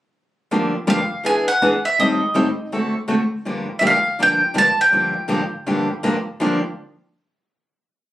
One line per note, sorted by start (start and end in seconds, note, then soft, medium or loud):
0.51 0.72 G2 medium
0.51 0.72 D3 medium
0.51 0.72 F3 medium
0.51 0.72 A#3 medium
0.51 0.73 D4 medium
0.51 0.73 G4 medium
0.87 0.99 G2 medium
0.87 0.99 D3 medium
0.87 0.99 F3 medium
0.87 0.99 A#3 medium
0.87 0.99 D4 medium
0.87 0.99 G4 medium
0.87 1.23 F5 medium
1.24 1.45 E3 medium
1.24 1.46 B3 medium
1.24 1.46 D4 medium
1.24 1.46 G#4 medium
1.24 1.47 G#5 medium
1.48 1.82 F#5 medium
1.62 1.73 E3 medium
1.62 1.73 B3 medium
1.62 1.73 D4 medium
1.62 1.73 G#4 medium
1.85 1.98 E5 medium
1.99 2.19 A2 medium
1.99 2.20 D#3 medium
1.99 2.20 G3 medium
1.99 2.20 C4 medium
1.99 2.20 G4 medium
1.99 2.20 A4 medium
1.99 2.69 D#5 medium
2.34 2.46 A2 medium
2.34 2.46 D#3 medium
2.34 2.46 G3 medium
2.34 2.46 C4 medium
2.34 2.46 G4 medium
2.34 2.46 A4 loud
2.72 2.93 D3 medium
2.72 2.93 A3 medium
2.72 2.93 C4 medium
2.72 2.93 F#4 medium
2.72 2.93 A4 medium
3.08 3.19 D3 medium
3.08 3.20 A3 medium
3.08 3.19 C4 medium
3.08 3.19 F#4 medium
3.08 3.20 A4 medium
3.45 3.66 G2 medium
3.45 3.67 D3 medium
3.45 3.66 F3 medium
3.45 3.67 A#3 medium
3.45 3.67 D4 medium
3.45 3.67 G4 medium
3.79 3.93 G2 medium
3.79 3.93 D3 medium
3.79 3.93 F3 medium
3.79 3.93 A#3 medium
3.79 3.93 D4 medium
3.79 3.93 G4 medium
3.79 3.83 E5 medium
3.87 4.22 F5 medium
4.19 4.40 G2 medium
4.19 4.40 D3 medium
4.19 4.40 F3 medium
4.19 4.40 A#3 medium
4.19 4.40 D4 medium
4.19 4.41 G4 medium
4.19 4.55 G5 medium
4.54 4.66 G2 medium
4.54 4.66 D3 medium
4.54 4.66 F3 medium
4.54 4.66 A#3 medium
4.54 4.67 D4 medium
4.54 4.67 G4 medium
4.58 4.78 A5 medium
4.81 6.00 G5 medium
4.91 5.13 G2 medium
4.91 5.13 D3 medium
4.91 5.13 F3 medium
4.91 5.14 A#3 medium
4.91 5.14 D4 medium
4.91 5.14 G4 medium
5.28 5.40 G2 medium
5.28 5.40 D3 medium
5.28 5.40 F3 medium
5.28 5.40 A#3 medium
5.28 5.40 D4 medium
5.28 5.40 G4 medium
5.66 5.87 G2 medium
5.66 5.87 D3 medium
5.66 5.87 F3 medium
5.66 5.88 A#3 medium
5.66 5.88 D4 medium
5.66 5.88 G4 medium
6.03 6.14 G2 medium
6.03 6.14 D3 medium
6.03 6.14 F3 medium
6.03 6.14 A#3 medium
6.03 6.14 D4 medium
6.03 6.15 G4 medium
6.40 6.58 G2 medium
6.40 6.58 D3 medium
6.40 6.58 F3 medium
6.40 6.59 A#3 medium
6.40 6.59 D4 medium
6.40 6.59 G4 medium